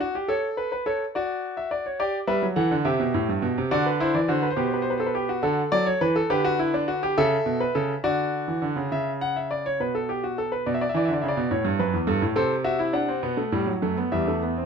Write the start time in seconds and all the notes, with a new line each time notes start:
Already playing: D5
0.00 F#4
0.15 G4
0.28 A4 C#5
0.57 B4
0.72 B4
0.86 A4 C#5
1.15 F#4 D5
1.57 E5
1.71 D5
1.86 C#5
2.00 G4 D5
2.27 G3 B4 E5
2.42 F#3
2.56 E3 A4 F#5
2.71 D3
2.85 C3 G4 E5
3.00 B2
3.14 A2
3.29 G2
3.42 B2
3.58 C3
3.71 D3 F#4 D5
3.86 B4
4.00 E4 C5
4.14 E3 D5
4.28 D3 F#4 C5
4.43 B4
4.50 C5
4.57 B2 G4 B4
4.66 C5
4.73 B4
4.82 C5
4.90 B4
4.98 A4 C5
5.06 B4
5.15 G4
5.29 F#4
5.43 D3 F#4 A4
5.72 F#3 D5
5.86 C#5
6.01 E3 B4
6.16 A4
6.30 D3 G4 B4
6.45 F#4
6.59 E4
6.74 D4
6.88 F#4
7.03 G4
7.18 C#3 A4 E5
7.46 B2
7.60 B4
7.75 C#3 A4
8.04 D3 F#4 D5
8.48 E3
8.62 D3
8.76 C#3
8.92 C#3 E5
9.21 F#5
9.36 E5
9.51 D5
9.66 C#5
9.80 B2 B4
9.95 A4
10.09 G4
10.24 F#4
10.38 A4
10.52 B4
10.66 B2 D5
10.74 E5
10.81 D5
10.89 E5
10.94 E3 D5
11.05 D3 E5
11.13 D5
11.21 C#3 E5
11.28 D5
11.37 B2
11.51 A2 C#5
11.65 G2
11.79 F#2 B4
11.93 E2
12.07 G2 A4
12.22 A2
12.36 C3 A4 C5
12.64 F#4 E5
12.79 E4
12.93 D4 F#5
13.08 C4
13.23 B2 B3
13.37 A3
13.52 A2 G3
13.67 F#3
13.82 F#2 A3
13.97 B3
14.12 E2 G3 E5
14.27 A3
14.43 B3
14.57 C4